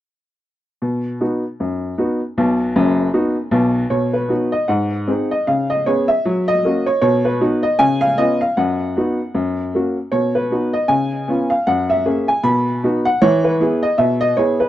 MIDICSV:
0, 0, Header, 1, 2, 480
1, 0, Start_track
1, 0, Key_signature, 5, "major"
1, 0, Tempo, 387597
1, 1011, Time_signature, 4, 2, 24, 8
1, 18190, End_track
2, 0, Start_track
2, 0, Title_t, "Upright piano"
2, 0, Program_c, 0, 0
2, 1012, Note_on_c, 0, 47, 54
2, 1230, Control_c, 0, 64, 127
2, 1419, Note_off_c, 0, 47, 0
2, 1495, Note_on_c, 0, 63, 38
2, 1496, Note_on_c, 0, 59, 38
2, 1500, Note_on_c, 0, 66, 36
2, 1508, Control_c, 0, 64, 0
2, 1757, Note_off_c, 0, 63, 0
2, 1758, Note_off_c, 0, 59, 0
2, 1761, Note_off_c, 0, 66, 0
2, 1983, Note_on_c, 0, 42, 48
2, 2384, Note_off_c, 0, 42, 0
2, 2452, Note_on_c, 0, 59, 42
2, 2453, Note_on_c, 0, 63, 38
2, 2466, Note_on_c, 0, 66, 40
2, 2714, Note_off_c, 0, 59, 0
2, 2715, Note_off_c, 0, 63, 0
2, 2725, Note_off_c, 0, 66, 0
2, 2944, Note_on_c, 0, 35, 75
2, 2944, Note_on_c, 0, 47, 67
2, 3148, Control_c, 0, 64, 127
2, 3321, Note_off_c, 0, 35, 0
2, 3321, Note_off_c, 0, 47, 0
2, 3414, Note_on_c, 0, 30, 70
2, 3416, Note_on_c, 0, 42, 82
2, 3417, Control_c, 0, 64, 0
2, 3795, Note_off_c, 0, 30, 0
2, 3796, Note_off_c, 0, 42, 0
2, 3884, Note_on_c, 0, 59, 42
2, 3884, Note_on_c, 0, 66, 54
2, 3888, Note_on_c, 0, 63, 50
2, 4149, Note_off_c, 0, 59, 0
2, 4149, Note_off_c, 0, 66, 0
2, 4151, Note_off_c, 0, 63, 0
2, 4351, Note_on_c, 0, 35, 75
2, 4357, Note_on_c, 0, 47, 78
2, 4741, Note_off_c, 0, 35, 0
2, 4744, Note_off_c, 0, 47, 0
2, 4832, Note_on_c, 0, 73, 61
2, 4835, Note_on_c, 0, 47, 58
2, 5080, Control_c, 0, 64, 127
2, 5120, Note_on_c, 0, 71, 52
2, 5122, Note_off_c, 0, 73, 0
2, 5248, Note_off_c, 0, 47, 0
2, 5308, Note_on_c, 0, 59, 40
2, 5321, Note_on_c, 0, 63, 36
2, 5324, Note_on_c, 0, 66, 44
2, 5343, Control_c, 0, 64, 0
2, 5577, Note_off_c, 0, 59, 0
2, 5587, Note_off_c, 0, 63, 0
2, 5588, Note_off_c, 0, 66, 0
2, 5599, Note_on_c, 0, 75, 64
2, 5605, Note_off_c, 0, 71, 0
2, 5796, Note_on_c, 0, 78, 59
2, 5801, Note_off_c, 0, 75, 0
2, 5805, Note_on_c, 0, 44, 61
2, 6033, Control_c, 0, 64, 127
2, 6213, Note_off_c, 0, 44, 0
2, 6286, Note_on_c, 0, 60, 35
2, 6293, Note_on_c, 0, 63, 35
2, 6297, Note_on_c, 0, 68, 36
2, 6306, Control_c, 0, 64, 0
2, 6551, Note_off_c, 0, 60, 0
2, 6556, Note_off_c, 0, 63, 0
2, 6558, Note_off_c, 0, 68, 0
2, 6565, Note_off_c, 0, 78, 0
2, 6579, Note_on_c, 0, 75, 64
2, 6771, Note_off_c, 0, 75, 0
2, 6778, Note_on_c, 0, 77, 72
2, 6781, Note_on_c, 0, 49, 59
2, 7004, Control_c, 0, 64, 127
2, 7056, Note_off_c, 0, 77, 0
2, 7057, Note_on_c, 0, 75, 67
2, 7183, Note_off_c, 0, 49, 0
2, 7250, Note_off_c, 0, 75, 0
2, 7261, Note_on_c, 0, 73, 72
2, 7262, Control_c, 0, 64, 0
2, 7262, Note_on_c, 0, 59, 42
2, 7273, Note_on_c, 0, 61, 38
2, 7276, Note_on_c, 0, 68, 46
2, 7523, Note_off_c, 0, 59, 0
2, 7530, Note_off_c, 0, 61, 0
2, 7530, Note_on_c, 0, 76, 74
2, 7532, Note_off_c, 0, 68, 0
2, 7538, Note_off_c, 0, 73, 0
2, 7746, Note_on_c, 0, 54, 75
2, 7948, Control_c, 0, 64, 127
2, 8011, Note_off_c, 0, 76, 0
2, 8024, Note_on_c, 0, 75, 86
2, 8147, Note_off_c, 0, 54, 0
2, 8223, Control_c, 0, 64, 0
2, 8232, Note_on_c, 0, 58, 45
2, 8234, Note_on_c, 0, 61, 46
2, 8243, Note_on_c, 0, 66, 40
2, 8490, Note_off_c, 0, 58, 0
2, 8491, Note_off_c, 0, 61, 0
2, 8498, Note_off_c, 0, 66, 0
2, 8498, Note_off_c, 0, 75, 0
2, 8500, Note_on_c, 0, 73, 74
2, 8669, Note_off_c, 0, 73, 0
2, 8688, Note_on_c, 0, 73, 85
2, 8691, Note_on_c, 0, 47, 80
2, 8923, Control_c, 0, 64, 127
2, 8972, Note_off_c, 0, 73, 0
2, 8977, Note_on_c, 0, 71, 63
2, 9099, Note_off_c, 0, 47, 0
2, 9174, Note_on_c, 0, 59, 45
2, 9179, Note_on_c, 0, 63, 50
2, 9184, Note_on_c, 0, 66, 54
2, 9188, Control_c, 0, 64, 0
2, 9437, Note_off_c, 0, 59, 0
2, 9441, Note_off_c, 0, 63, 0
2, 9444, Note_off_c, 0, 66, 0
2, 9448, Note_on_c, 0, 75, 74
2, 9456, Note_off_c, 0, 71, 0
2, 9645, Note_on_c, 0, 80, 90
2, 9646, Note_on_c, 0, 49, 80
2, 9647, Note_off_c, 0, 75, 0
2, 9889, Control_c, 0, 64, 127
2, 9918, Note_on_c, 0, 77, 91
2, 9932, Note_off_c, 0, 80, 0
2, 10057, Note_off_c, 0, 49, 0
2, 10123, Note_off_c, 0, 77, 0
2, 10129, Note_on_c, 0, 75, 85
2, 10131, Note_on_c, 0, 59, 44
2, 10138, Note_on_c, 0, 61, 46
2, 10144, Note_on_c, 0, 65, 48
2, 10146, Control_c, 0, 64, 0
2, 10395, Note_off_c, 0, 59, 0
2, 10401, Note_off_c, 0, 61, 0
2, 10405, Note_off_c, 0, 65, 0
2, 10414, Note_off_c, 0, 75, 0
2, 10414, Note_on_c, 0, 77, 73
2, 10611, Note_off_c, 0, 77, 0
2, 10613, Note_on_c, 0, 78, 67
2, 10617, Note_on_c, 0, 42, 60
2, 10850, Control_c, 0, 64, 127
2, 11024, Note_off_c, 0, 42, 0
2, 11102, Control_c, 0, 64, 0
2, 11107, Note_on_c, 0, 59, 41
2, 11112, Note_on_c, 0, 63, 37
2, 11115, Note_on_c, 0, 66, 41
2, 11368, Note_off_c, 0, 59, 0
2, 11371, Note_off_c, 0, 63, 0
2, 11373, Note_off_c, 0, 66, 0
2, 11572, Note_on_c, 0, 42, 58
2, 11812, Control_c, 0, 64, 127
2, 11981, Note_off_c, 0, 42, 0
2, 12069, Control_c, 0, 64, 0
2, 12070, Note_on_c, 0, 58, 33
2, 12075, Note_on_c, 0, 61, 34
2, 12084, Note_on_c, 0, 66, 41
2, 12330, Note_off_c, 0, 58, 0
2, 12333, Note_off_c, 0, 61, 0
2, 12339, Note_off_c, 0, 78, 0
2, 12340, Note_off_c, 0, 66, 0
2, 12527, Note_on_c, 0, 73, 74
2, 12534, Note_on_c, 0, 47, 51
2, 12777, Control_c, 0, 64, 127
2, 12815, Note_off_c, 0, 73, 0
2, 12818, Note_on_c, 0, 71, 61
2, 12943, Note_off_c, 0, 47, 0
2, 13021, Note_on_c, 0, 59, 34
2, 13024, Note_on_c, 0, 63, 30
2, 13028, Control_c, 0, 64, 0
2, 13028, Note_on_c, 0, 66, 41
2, 13283, Note_off_c, 0, 59, 0
2, 13286, Note_off_c, 0, 63, 0
2, 13289, Note_off_c, 0, 66, 0
2, 13293, Note_on_c, 0, 75, 66
2, 13299, Note_off_c, 0, 71, 0
2, 13476, Note_on_c, 0, 80, 73
2, 13480, Note_on_c, 0, 49, 61
2, 13492, Note_off_c, 0, 75, 0
2, 13721, Control_c, 0, 64, 127
2, 13895, Note_off_c, 0, 49, 0
2, 13971, Note_on_c, 0, 59, 38
2, 13981, Note_on_c, 0, 61, 43
2, 13986, Note_on_c, 0, 65, 45
2, 13992, Control_c, 0, 64, 0
2, 14236, Note_off_c, 0, 59, 0
2, 14241, Note_on_c, 0, 77, 67
2, 14244, Note_off_c, 0, 61, 0
2, 14247, Note_off_c, 0, 65, 0
2, 14250, Note_off_c, 0, 80, 0
2, 14446, Note_off_c, 0, 77, 0
2, 14451, Note_on_c, 0, 78, 76
2, 14454, Note_on_c, 0, 42, 63
2, 14686, Control_c, 0, 64, 127
2, 14733, Note_on_c, 0, 76, 69
2, 14737, Note_off_c, 0, 78, 0
2, 14862, Note_off_c, 0, 42, 0
2, 14929, Note_on_c, 0, 61, 40
2, 14930, Note_on_c, 0, 58, 45
2, 14932, Note_on_c, 0, 68, 47
2, 14955, Control_c, 0, 64, 0
2, 15194, Note_off_c, 0, 61, 0
2, 15195, Note_off_c, 0, 58, 0
2, 15197, Note_off_c, 0, 68, 0
2, 15210, Note_on_c, 0, 80, 68
2, 15216, Note_off_c, 0, 76, 0
2, 15398, Note_on_c, 0, 47, 71
2, 15399, Note_on_c, 0, 83, 77
2, 15411, Note_off_c, 0, 80, 0
2, 15655, Control_c, 0, 64, 127
2, 15813, Note_off_c, 0, 47, 0
2, 15898, Note_on_c, 0, 59, 48
2, 15900, Note_on_c, 0, 63, 44
2, 15908, Note_on_c, 0, 66, 44
2, 15909, Control_c, 0, 64, 0
2, 16161, Note_off_c, 0, 59, 0
2, 16162, Note_off_c, 0, 63, 0
2, 16166, Note_on_c, 0, 78, 83
2, 16168, Note_off_c, 0, 66, 0
2, 16170, Note_off_c, 0, 83, 0
2, 16367, Note_on_c, 0, 73, 97
2, 16368, Note_off_c, 0, 78, 0
2, 16369, Note_on_c, 0, 52, 87
2, 16621, Control_c, 0, 64, 127
2, 16648, Note_on_c, 0, 71, 68
2, 16653, Note_off_c, 0, 73, 0
2, 16779, Note_off_c, 0, 52, 0
2, 16849, Note_on_c, 0, 59, 56
2, 16855, Note_on_c, 0, 64, 50
2, 16863, Control_c, 0, 64, 0
2, 16864, Note_on_c, 0, 68, 48
2, 17114, Note_off_c, 0, 59, 0
2, 17118, Note_off_c, 0, 64, 0
2, 17122, Note_on_c, 0, 75, 77
2, 17125, Note_off_c, 0, 68, 0
2, 17131, Note_off_c, 0, 71, 0
2, 17311, Note_on_c, 0, 76, 73
2, 17314, Note_on_c, 0, 47, 69
2, 17325, Note_off_c, 0, 75, 0
2, 17593, Note_on_c, 0, 75, 85
2, 17605, Note_off_c, 0, 76, 0
2, 17729, Note_off_c, 0, 47, 0
2, 17792, Note_on_c, 0, 73, 75
2, 17800, Note_off_c, 0, 75, 0
2, 17802, Note_on_c, 0, 59, 41
2, 17805, Note_on_c, 0, 64, 42
2, 17815, Note_on_c, 0, 68, 49
2, 18068, Note_off_c, 0, 59, 0
2, 18070, Note_off_c, 0, 64, 0
2, 18077, Note_off_c, 0, 68, 0
2, 18081, Note_on_c, 0, 71, 67
2, 18085, Note_off_c, 0, 73, 0
2, 18190, Note_off_c, 0, 71, 0
2, 18190, End_track
0, 0, End_of_file